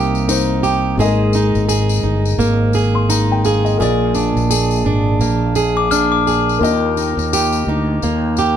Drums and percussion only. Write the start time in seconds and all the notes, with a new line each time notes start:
0.15 tambourine
0.29 tambourine
0.64 tambourine
1.00 tambourine
1.33 tambourine
1.55 tambourine
1.69 tambourine
1.89 tambourine
2.25 tambourine
2.40 tambourine
2.73 tambourine
3.10 tambourine
3.45 tambourine
3.66 tambourine
3.82 tambourine
4.14 tambourine
4.37 tambourine
4.51 tambourine
4.71 tambourine
5.21 tambourine
5.55 tambourine
5.91 tambourine
6.27 tambourine
6.49 tambourine
6.64 tambourine
6.97 tambourine
7.19 tambourine
7.33 tambourine
7.52 tambourine
8.02 tambourine
8.37 tambourine